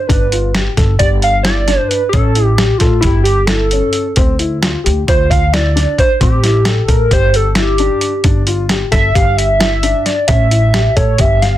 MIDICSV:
0, 0, Header, 1, 5, 480
1, 0, Start_track
1, 0, Key_signature, 0, "minor"
1, 0, Tempo, 453172
1, 102, Time_signature, 9, 3, 24, 8
1, 12263, End_track
2, 0, Start_track
2, 0, Title_t, "Analog synth lead"
2, 0, Program_c, 0, 81
2, 74, Note_on_c, 0, 71, 75
2, 567, Note_off_c, 0, 71, 0
2, 1047, Note_on_c, 0, 74, 103
2, 1158, Note_off_c, 0, 74, 0
2, 1309, Note_on_c, 0, 77, 106
2, 1511, Note_off_c, 0, 77, 0
2, 1517, Note_on_c, 0, 74, 97
2, 1898, Note_off_c, 0, 74, 0
2, 1898, Note_on_c, 0, 72, 97
2, 1991, Note_on_c, 0, 71, 100
2, 2007, Note_off_c, 0, 72, 0
2, 2209, Note_off_c, 0, 71, 0
2, 2215, Note_on_c, 0, 69, 95
2, 2596, Note_off_c, 0, 69, 0
2, 2596, Note_on_c, 0, 67, 95
2, 2710, Note_off_c, 0, 67, 0
2, 2710, Note_on_c, 0, 67, 87
2, 2944, Note_on_c, 0, 65, 83
2, 2959, Note_off_c, 0, 67, 0
2, 3179, Note_off_c, 0, 65, 0
2, 3185, Note_on_c, 0, 64, 94
2, 3423, Note_off_c, 0, 64, 0
2, 3429, Note_on_c, 0, 67, 90
2, 3664, Note_on_c, 0, 69, 86
2, 3680, Note_off_c, 0, 67, 0
2, 4879, Note_off_c, 0, 69, 0
2, 5386, Note_on_c, 0, 72, 104
2, 5615, Note_on_c, 0, 77, 114
2, 5631, Note_off_c, 0, 72, 0
2, 5857, Note_on_c, 0, 74, 99
2, 5873, Note_off_c, 0, 77, 0
2, 6336, Note_off_c, 0, 74, 0
2, 6347, Note_on_c, 0, 72, 90
2, 6564, Note_off_c, 0, 72, 0
2, 6594, Note_on_c, 0, 67, 84
2, 7071, Note_on_c, 0, 69, 81
2, 7087, Note_off_c, 0, 67, 0
2, 7306, Note_on_c, 0, 70, 93
2, 7322, Note_off_c, 0, 69, 0
2, 7541, Note_off_c, 0, 70, 0
2, 7553, Note_on_c, 0, 72, 102
2, 7793, Note_on_c, 0, 69, 94
2, 7809, Note_off_c, 0, 72, 0
2, 8024, Note_off_c, 0, 69, 0
2, 8038, Note_on_c, 0, 67, 81
2, 9185, Note_off_c, 0, 67, 0
2, 9444, Note_on_c, 0, 76, 102
2, 9686, Note_on_c, 0, 77, 117
2, 9701, Note_off_c, 0, 76, 0
2, 9924, Note_on_c, 0, 76, 127
2, 9940, Note_off_c, 0, 77, 0
2, 10651, Note_on_c, 0, 74, 99
2, 10667, Note_off_c, 0, 76, 0
2, 10879, Note_off_c, 0, 74, 0
2, 10885, Note_on_c, 0, 76, 97
2, 11608, Note_on_c, 0, 73, 95
2, 11624, Note_off_c, 0, 76, 0
2, 11868, Note_on_c, 0, 76, 112
2, 11884, Note_off_c, 0, 73, 0
2, 12091, Note_on_c, 0, 77, 100
2, 12107, Note_off_c, 0, 76, 0
2, 12263, Note_off_c, 0, 77, 0
2, 12263, End_track
3, 0, Start_track
3, 0, Title_t, "Grand piano"
3, 0, Program_c, 1, 0
3, 92, Note_on_c, 1, 62, 84
3, 265, Note_off_c, 1, 62, 0
3, 339, Note_on_c, 1, 65, 70
3, 510, Note_off_c, 1, 65, 0
3, 579, Note_on_c, 1, 67, 65
3, 750, Note_off_c, 1, 67, 0
3, 816, Note_on_c, 1, 69, 64
3, 988, Note_off_c, 1, 69, 0
3, 1058, Note_on_c, 1, 67, 81
3, 1399, Note_off_c, 1, 67, 0
3, 1532, Note_on_c, 1, 64, 72
3, 1705, Note_off_c, 1, 64, 0
3, 1778, Note_on_c, 1, 62, 73
3, 2119, Note_off_c, 1, 62, 0
3, 2261, Note_on_c, 1, 61, 92
3, 2430, Note_off_c, 1, 61, 0
3, 2500, Note_on_c, 1, 64, 66
3, 2669, Note_off_c, 1, 64, 0
3, 2735, Note_on_c, 1, 67, 73
3, 2906, Note_off_c, 1, 67, 0
3, 2978, Note_on_c, 1, 69, 66
3, 3148, Note_off_c, 1, 69, 0
3, 3218, Note_on_c, 1, 67, 85
3, 3558, Note_off_c, 1, 67, 0
3, 3694, Note_on_c, 1, 64, 73
3, 3865, Note_off_c, 1, 64, 0
3, 3949, Note_on_c, 1, 61, 70
3, 4285, Note_off_c, 1, 61, 0
3, 4416, Note_on_c, 1, 60, 88
3, 4586, Note_off_c, 1, 60, 0
3, 4651, Note_on_c, 1, 64, 68
3, 4823, Note_off_c, 1, 64, 0
3, 4891, Note_on_c, 1, 65, 73
3, 5063, Note_off_c, 1, 65, 0
3, 5125, Note_on_c, 1, 67, 70
3, 5299, Note_off_c, 1, 67, 0
3, 5374, Note_on_c, 1, 65, 71
3, 5715, Note_off_c, 1, 65, 0
3, 5858, Note_on_c, 1, 64, 80
3, 6028, Note_off_c, 1, 64, 0
3, 6098, Note_on_c, 1, 62, 67
3, 6438, Note_off_c, 1, 62, 0
3, 6571, Note_on_c, 1, 60, 90
3, 6743, Note_off_c, 1, 60, 0
3, 6810, Note_on_c, 1, 64, 70
3, 6982, Note_off_c, 1, 64, 0
3, 7057, Note_on_c, 1, 67, 67
3, 7227, Note_off_c, 1, 67, 0
3, 7287, Note_on_c, 1, 69, 65
3, 7460, Note_off_c, 1, 69, 0
3, 7545, Note_on_c, 1, 67, 75
3, 7882, Note_off_c, 1, 67, 0
3, 8014, Note_on_c, 1, 64, 84
3, 8185, Note_off_c, 1, 64, 0
3, 8257, Note_on_c, 1, 62, 70
3, 8597, Note_off_c, 1, 62, 0
3, 8732, Note_on_c, 1, 62, 79
3, 8904, Note_off_c, 1, 62, 0
3, 8967, Note_on_c, 1, 65, 75
3, 9141, Note_off_c, 1, 65, 0
3, 9207, Note_on_c, 1, 67, 69
3, 9381, Note_off_c, 1, 67, 0
3, 9441, Note_on_c, 1, 69, 66
3, 9617, Note_off_c, 1, 69, 0
3, 9690, Note_on_c, 1, 67, 82
3, 10034, Note_off_c, 1, 67, 0
3, 10161, Note_on_c, 1, 64, 77
3, 10337, Note_off_c, 1, 64, 0
3, 10413, Note_on_c, 1, 62, 66
3, 10756, Note_off_c, 1, 62, 0
3, 10896, Note_on_c, 1, 61, 84
3, 11067, Note_off_c, 1, 61, 0
3, 11130, Note_on_c, 1, 64, 67
3, 11303, Note_off_c, 1, 64, 0
3, 11375, Note_on_c, 1, 67, 72
3, 11547, Note_off_c, 1, 67, 0
3, 11611, Note_on_c, 1, 69, 75
3, 11784, Note_off_c, 1, 69, 0
3, 11845, Note_on_c, 1, 67, 75
3, 12191, Note_off_c, 1, 67, 0
3, 12263, End_track
4, 0, Start_track
4, 0, Title_t, "Upright bass"
4, 0, Program_c, 2, 32
4, 102, Note_on_c, 2, 31, 82
4, 705, Note_off_c, 2, 31, 0
4, 821, Note_on_c, 2, 31, 89
4, 1022, Note_off_c, 2, 31, 0
4, 1061, Note_on_c, 2, 31, 82
4, 1865, Note_off_c, 2, 31, 0
4, 2260, Note_on_c, 2, 33, 99
4, 2863, Note_off_c, 2, 33, 0
4, 2981, Note_on_c, 2, 45, 78
4, 3181, Note_off_c, 2, 45, 0
4, 3217, Note_on_c, 2, 31, 92
4, 4022, Note_off_c, 2, 31, 0
4, 4420, Note_on_c, 2, 38, 93
4, 5022, Note_off_c, 2, 38, 0
4, 5149, Note_on_c, 2, 38, 87
4, 5345, Note_off_c, 2, 38, 0
4, 5387, Note_on_c, 2, 38, 83
4, 6188, Note_off_c, 2, 38, 0
4, 6584, Note_on_c, 2, 33, 88
4, 7184, Note_off_c, 2, 33, 0
4, 7292, Note_on_c, 2, 45, 83
4, 7495, Note_off_c, 2, 45, 0
4, 7535, Note_on_c, 2, 31, 94
4, 8341, Note_off_c, 2, 31, 0
4, 8735, Note_on_c, 2, 31, 85
4, 9340, Note_off_c, 2, 31, 0
4, 9456, Note_on_c, 2, 31, 95
4, 9657, Note_off_c, 2, 31, 0
4, 9700, Note_on_c, 2, 31, 88
4, 10505, Note_off_c, 2, 31, 0
4, 10896, Note_on_c, 2, 33, 107
4, 11501, Note_off_c, 2, 33, 0
4, 11620, Note_on_c, 2, 45, 82
4, 11821, Note_off_c, 2, 45, 0
4, 11857, Note_on_c, 2, 31, 89
4, 12263, Note_off_c, 2, 31, 0
4, 12263, End_track
5, 0, Start_track
5, 0, Title_t, "Drums"
5, 101, Note_on_c, 9, 36, 110
5, 104, Note_on_c, 9, 42, 73
5, 207, Note_off_c, 9, 36, 0
5, 210, Note_off_c, 9, 42, 0
5, 341, Note_on_c, 9, 42, 59
5, 447, Note_off_c, 9, 42, 0
5, 578, Note_on_c, 9, 38, 101
5, 578, Note_on_c, 9, 42, 78
5, 684, Note_off_c, 9, 38, 0
5, 684, Note_off_c, 9, 42, 0
5, 819, Note_on_c, 9, 36, 79
5, 819, Note_on_c, 9, 38, 31
5, 819, Note_on_c, 9, 42, 58
5, 925, Note_off_c, 9, 36, 0
5, 925, Note_off_c, 9, 38, 0
5, 925, Note_off_c, 9, 42, 0
5, 1053, Note_on_c, 9, 42, 75
5, 1058, Note_on_c, 9, 36, 96
5, 1159, Note_off_c, 9, 42, 0
5, 1164, Note_off_c, 9, 36, 0
5, 1296, Note_on_c, 9, 42, 55
5, 1402, Note_off_c, 9, 42, 0
5, 1532, Note_on_c, 9, 38, 108
5, 1532, Note_on_c, 9, 42, 78
5, 1638, Note_off_c, 9, 38, 0
5, 1638, Note_off_c, 9, 42, 0
5, 1776, Note_on_c, 9, 38, 32
5, 1776, Note_on_c, 9, 42, 57
5, 1882, Note_off_c, 9, 38, 0
5, 1882, Note_off_c, 9, 42, 0
5, 2021, Note_on_c, 9, 42, 57
5, 2127, Note_off_c, 9, 42, 0
5, 2257, Note_on_c, 9, 42, 85
5, 2260, Note_on_c, 9, 36, 111
5, 2363, Note_off_c, 9, 42, 0
5, 2366, Note_off_c, 9, 36, 0
5, 2493, Note_on_c, 9, 42, 63
5, 2599, Note_off_c, 9, 42, 0
5, 2735, Note_on_c, 9, 38, 107
5, 2735, Note_on_c, 9, 42, 72
5, 2841, Note_off_c, 9, 38, 0
5, 2841, Note_off_c, 9, 42, 0
5, 2965, Note_on_c, 9, 38, 34
5, 2965, Note_on_c, 9, 42, 61
5, 2976, Note_on_c, 9, 36, 72
5, 3071, Note_off_c, 9, 38, 0
5, 3071, Note_off_c, 9, 42, 0
5, 3082, Note_off_c, 9, 36, 0
5, 3204, Note_on_c, 9, 38, 32
5, 3204, Note_on_c, 9, 42, 72
5, 3214, Note_on_c, 9, 36, 105
5, 3310, Note_off_c, 9, 38, 0
5, 3310, Note_off_c, 9, 42, 0
5, 3320, Note_off_c, 9, 36, 0
5, 3447, Note_on_c, 9, 42, 58
5, 3553, Note_off_c, 9, 42, 0
5, 3679, Note_on_c, 9, 38, 108
5, 3679, Note_on_c, 9, 42, 77
5, 3785, Note_off_c, 9, 38, 0
5, 3785, Note_off_c, 9, 42, 0
5, 3929, Note_on_c, 9, 42, 55
5, 4035, Note_off_c, 9, 42, 0
5, 4159, Note_on_c, 9, 42, 57
5, 4265, Note_off_c, 9, 42, 0
5, 4406, Note_on_c, 9, 42, 71
5, 4415, Note_on_c, 9, 36, 112
5, 4512, Note_off_c, 9, 42, 0
5, 4521, Note_off_c, 9, 36, 0
5, 4652, Note_on_c, 9, 42, 54
5, 4758, Note_off_c, 9, 42, 0
5, 4899, Note_on_c, 9, 38, 94
5, 4899, Note_on_c, 9, 42, 72
5, 5005, Note_off_c, 9, 38, 0
5, 5005, Note_off_c, 9, 42, 0
5, 5148, Note_on_c, 9, 42, 57
5, 5254, Note_off_c, 9, 42, 0
5, 5383, Note_on_c, 9, 36, 105
5, 5383, Note_on_c, 9, 42, 77
5, 5488, Note_off_c, 9, 42, 0
5, 5489, Note_off_c, 9, 36, 0
5, 5623, Note_on_c, 9, 36, 67
5, 5628, Note_on_c, 9, 42, 58
5, 5729, Note_off_c, 9, 36, 0
5, 5734, Note_off_c, 9, 42, 0
5, 5864, Note_on_c, 9, 38, 100
5, 5864, Note_on_c, 9, 42, 84
5, 5970, Note_off_c, 9, 38, 0
5, 5970, Note_off_c, 9, 42, 0
5, 6109, Note_on_c, 9, 38, 31
5, 6109, Note_on_c, 9, 42, 65
5, 6215, Note_off_c, 9, 38, 0
5, 6215, Note_off_c, 9, 42, 0
5, 6338, Note_on_c, 9, 36, 63
5, 6340, Note_on_c, 9, 42, 51
5, 6444, Note_off_c, 9, 36, 0
5, 6446, Note_off_c, 9, 42, 0
5, 6576, Note_on_c, 9, 36, 110
5, 6576, Note_on_c, 9, 42, 78
5, 6682, Note_off_c, 9, 36, 0
5, 6682, Note_off_c, 9, 42, 0
5, 6817, Note_on_c, 9, 38, 37
5, 6817, Note_on_c, 9, 42, 66
5, 6923, Note_off_c, 9, 38, 0
5, 6923, Note_off_c, 9, 42, 0
5, 7046, Note_on_c, 9, 38, 100
5, 7046, Note_on_c, 9, 42, 75
5, 7152, Note_off_c, 9, 38, 0
5, 7152, Note_off_c, 9, 42, 0
5, 7292, Note_on_c, 9, 42, 61
5, 7293, Note_on_c, 9, 36, 76
5, 7398, Note_off_c, 9, 42, 0
5, 7399, Note_off_c, 9, 36, 0
5, 7532, Note_on_c, 9, 36, 93
5, 7533, Note_on_c, 9, 42, 78
5, 7638, Note_off_c, 9, 36, 0
5, 7639, Note_off_c, 9, 42, 0
5, 7773, Note_on_c, 9, 42, 57
5, 7879, Note_off_c, 9, 42, 0
5, 8000, Note_on_c, 9, 38, 97
5, 8000, Note_on_c, 9, 42, 69
5, 8106, Note_off_c, 9, 38, 0
5, 8106, Note_off_c, 9, 42, 0
5, 8243, Note_on_c, 9, 42, 53
5, 8349, Note_off_c, 9, 42, 0
5, 8487, Note_on_c, 9, 42, 52
5, 8593, Note_off_c, 9, 42, 0
5, 8726, Note_on_c, 9, 42, 84
5, 8730, Note_on_c, 9, 36, 103
5, 8832, Note_off_c, 9, 42, 0
5, 8836, Note_off_c, 9, 36, 0
5, 8968, Note_on_c, 9, 42, 59
5, 9074, Note_off_c, 9, 42, 0
5, 9208, Note_on_c, 9, 38, 96
5, 9208, Note_on_c, 9, 42, 74
5, 9314, Note_off_c, 9, 38, 0
5, 9314, Note_off_c, 9, 42, 0
5, 9448, Note_on_c, 9, 38, 33
5, 9448, Note_on_c, 9, 42, 59
5, 9453, Note_on_c, 9, 36, 82
5, 9553, Note_off_c, 9, 38, 0
5, 9553, Note_off_c, 9, 42, 0
5, 9559, Note_off_c, 9, 36, 0
5, 9696, Note_on_c, 9, 36, 109
5, 9702, Note_on_c, 9, 42, 79
5, 9802, Note_off_c, 9, 36, 0
5, 9808, Note_off_c, 9, 42, 0
5, 9940, Note_on_c, 9, 42, 65
5, 10046, Note_off_c, 9, 42, 0
5, 10174, Note_on_c, 9, 38, 107
5, 10174, Note_on_c, 9, 42, 78
5, 10280, Note_off_c, 9, 38, 0
5, 10280, Note_off_c, 9, 42, 0
5, 10412, Note_on_c, 9, 42, 61
5, 10518, Note_off_c, 9, 42, 0
5, 10654, Note_on_c, 9, 38, 34
5, 10654, Note_on_c, 9, 42, 60
5, 10760, Note_off_c, 9, 38, 0
5, 10760, Note_off_c, 9, 42, 0
5, 10887, Note_on_c, 9, 42, 89
5, 10895, Note_on_c, 9, 36, 104
5, 10993, Note_off_c, 9, 42, 0
5, 11001, Note_off_c, 9, 36, 0
5, 11136, Note_on_c, 9, 42, 64
5, 11242, Note_off_c, 9, 42, 0
5, 11375, Note_on_c, 9, 38, 94
5, 11375, Note_on_c, 9, 42, 70
5, 11481, Note_off_c, 9, 38, 0
5, 11481, Note_off_c, 9, 42, 0
5, 11616, Note_on_c, 9, 36, 80
5, 11616, Note_on_c, 9, 42, 58
5, 11722, Note_off_c, 9, 36, 0
5, 11722, Note_off_c, 9, 42, 0
5, 11846, Note_on_c, 9, 42, 80
5, 11856, Note_on_c, 9, 36, 101
5, 11952, Note_off_c, 9, 42, 0
5, 11962, Note_off_c, 9, 36, 0
5, 12100, Note_on_c, 9, 38, 34
5, 12100, Note_on_c, 9, 42, 56
5, 12206, Note_off_c, 9, 38, 0
5, 12206, Note_off_c, 9, 42, 0
5, 12263, End_track
0, 0, End_of_file